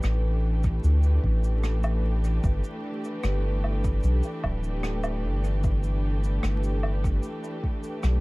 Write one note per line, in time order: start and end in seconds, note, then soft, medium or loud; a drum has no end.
0.00 0.80 A1 medium
0.00 8.20 E3 medium
0.00 8.20 A3 medium
0.00 8.20 D4 medium
0.00 8.20 G4 medium
0.00 8.20 B4 medium
0.00 cross-stick medium
0.00 cabasa medium
0.63 kick medium
0.63 cabasa medium
0.84 1.19 D2 loud
0.84 cabasa medium
1.03 cabasa soft
1.24 2.40 A1 medium
1.24 kick medium
1.44 cabasa medium
1.64 cross-stick medium
1.64 cabasa medium
1.83 cabasa soft
1.83 low woodblock medium
2.24 cabasa medium
2.44 2.62 G1 medium
2.44 kick loud
2.44 cabasa medium
2.64 cabasa soft
3.04 cabasa medium
3.24 4.00 G1 medium
3.24 cross-stick medium
3.24 cabasa medium
3.64 low woodblock medium
3.84 kick medium
3.84 cabasa medium
4.03 4.22 B1 loud
4.03 cabasa medium
4.23 cabasa soft
4.44 5.25 D1 medium
4.44 kick medium
4.44 low woodblock medium
4.63 cabasa medium
4.83 cross-stick medium
4.83 cabasa medium
5.03 cabasa soft
5.03 low woodblock medium
5.24 6.40 G1 loud
5.44 cabasa medium
5.63 kick loud
5.63 cabasa medium
5.83 cabasa soft
6.24 cabasa medium
6.43 7.20 G1 medium
6.43 cross-stick medium
6.43 cabasa medium
6.63 cabasa soft
6.83 low woodblock medium
7.04 kick loud
7.04 cabasa medium
7.23 cabasa medium
7.44 cabasa soft
7.64 kick medium
7.84 cabasa medium
8.03 8.20 B1 loud
8.03 cross-stick medium
8.03 cabasa medium